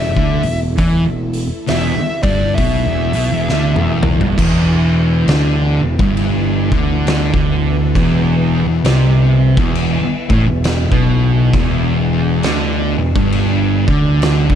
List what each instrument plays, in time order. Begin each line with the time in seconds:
Already playing: fingered electric bass E1, string machine E3 A3 E4, lead electric guitar E5
0.16 fingered electric bass D2, distorted electric guitar D3, kick
0.43 fingered electric bass E1, distorted electric guitar E2, open hi-hat
0.77 fingered electric bass E2, distorted electric guitar E3, kick, open hi-hat
1.06 fingered electric bass E1, distorted electric guitar E2
1.33 open hi-hat
1.67 fingered electric bass E1, distorted electric guitar E2, lead electric guitar E5, snare, open hi-hat
1.96 muted fingered electric bass stroke, muted distorted electric guitar stroke
2.23 fingered electric bass G1, distorted electric guitar G2, lead electric guitar D5, kick, open hi-hat
2.55 fingered electric bass B1, lead electric guitar E5, kick, open hi-hat
2.59 distorted electric guitar B2
2.86 fingered electric bass E1, distorted electric guitar E2
3.13 fingered electric bass B1, distorted electric guitar B2, open hi-hat
3.30 fingered electric bass E1, distorted electric guitar E2
3.47 fingered electric bass D2, distorted electric guitar D3, snare
3.74 fingered electric bass E1, distorted electric guitar E2, high tom
4.03 mid tom
4.19 fingered electric bass G1, distorted electric guitar G2, floor tom
4.37 fingered electric bass E1, distorted electric guitar E2, string machine E3 B3 E4, kick, crash
5.26 fingered electric bass D2, distorted electric guitar D3, snare, crash
5.81 fingered electric bass E1, distorted electric guitar E2
5.99 fingered electric bass G1, distorted electric guitar G2, kick
6.17 crash
6.72 fingered electric bass D2, distorted electric guitar D3, kick
7.07 snare, crash
7.33 fingered electric bass D2, distorted electric guitar D3, kick
7.95 fingered electric bass E1, distorted electric guitar E2, kick, crash
8.66 fingered electric bass E1, distorted electric guitar E2
8.84 fingered electric bass C2, distorted electric guitar C3, snare, crash
9.57 fingered electric bass E1, distorted electric guitar E2, kick
9.75 crash
10.02 muted distorted electric guitar stroke, muted fingered electric bass stroke
10.29 fingered electric bass A1, distorted electric guitar A2, kick
10.46 fingered electric bass E1, distorted electric guitar E2
10.64 snare, crash
10.92 fingered electric bass B1, distorted electric guitar B2, kick
11.53 fingered electric bass E1, distorted electric guitar E2, string machine D4, kick, crash
12.43 fingered electric bass D2, distorted electric guitar D3, snare, crash
12.99 fingered electric bass E1, distorted electric guitar E2
13.16 fingered electric bass G1, distorted electric guitar G2, kick
13.32 crash
13.87 fingered electric bass D2, distorted electric guitar D3, kick
14.22 snare, crash
14.50 fingered electric bass D2, distorted electric guitar D3, kick